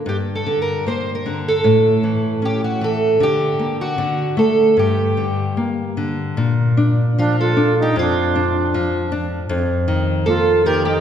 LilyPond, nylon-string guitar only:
\new Staff \with { instrumentName = "Nylon-string guitar" } { \clef bass \time 2/4 \key g \minor \tempo 4 = 77 g,8 d8 bes8 d8 | a,8 e8 cis'8 e8 | d8 bes8 d8 a8 | g,8 d8 bes8 d8 |
\key bes \major bes,8 d'8 f8 d'8 | f,8 d'8 f8 d'8 | f,8 ees8 bes8 ees8 | }